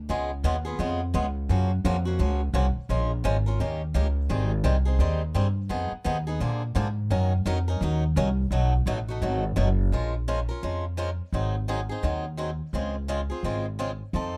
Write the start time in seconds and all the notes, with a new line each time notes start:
0.09 C#2 C#3 G#3 B3 F4 G#4
0.44 D#2 C#3 G#3 B3 F4 G#4
0.65 B3 F4 G#4
0.79 F2 C#3 G#3 B3 F4 G#4
1.14 C#2 C#3 G#3 B3 F4 G#4
1.49 F#2 C#3 F3 A#3 C#4 F#4
1.85 F2 C#3 F3 A#3 C#4 F#4
2.05 A#3 C#4 F#4
2.19 C#2 C#3 F3 A#3 C#4 F#4
2.53 C2 C#3 F3 A#3 C#4 F#4
2.76 muted upright bass stroke
2.89 A#1 F3 G#3 C#4 F4 A#4
3.24 G#1 F3 G#3 C#4 F4 A#4
3.46 C#4 F4 A#4
3.60 D#2 D#3 A#3 C#4 G4 A#4
3.94 C#2 D#3 A#3 C#4 G4 A#4
4.29 G#1 D#3 G3 C4 D#4 G#4
4.64 C2 D#3 G3 C4 D#4 G#4
4.85 C4 D#4 G#4
4.99 D#2 D#3 G3 C4 D#4 G#4
5.34 G2 D#3 G3 C4 D#4 G#4
5.69 F2 F3 B3 D#4 G#4
5.91 muted upright bass stroke
6.04 D#2 F3 B3 D#4 G#4
6.27 B3 D#4 G#4
6.40 A#2 D3 F3 A#3 D4 G#4
6.75 G#2 D3 F3 A#3 D4 G#4
7.10 F#2 D#3 F#3 C#4 D#4 A#4
7.46 F2 D#3 F#3 C#4 D#4 A#4
7.68 C#4 D#4 A#4
7.81 D#2 D#3 F#3 C#4 D#4 A#4
8.16 C2 D#3 F#3 C#4 D#4 A#4
8.51 B1 B2 F#3 A3 D#4 F#4
8.86 A1 B2 F#3 A3 D#4 F#4
9.08 A3 D#4 F#4
9.22 G#1 B2 F#3 A3 D#4 F#4
9.56 F#1 B2 F#3 A3 D#4 F#4
9.92 F3 G#3 C#4 F4 A#4
10.28 F3 G#3 C#4 F4 A#4
10.49 C#4 F4 A#4
10.63 F2 F3 G#3 C#4 F4 A#4
10.97 F3 G#3 C#4 F4 A#4
11.32 G#1 D#3 F#3 C4 D#4 G#4
11.68 D#3 F#3 C4 D#4 G#4
11.89 C4 D#4 G#4
12.03 D#2 D#3 F#3 C4 D#4 G#4
12.37 D#3 F#3 C4 D#4 G#4
12.73 C#2 C#3 G#3 C4 F4 G#4
13.08 C#3 G#3 C4 F4 G#4
13.30 C4 F4 G#4
13.43 G#1 C#3 G#3 C4 F4 G#4
13.79 C#3 G#3 C4 F4 G#4
14.13 F2 F3 C4 D#4 A4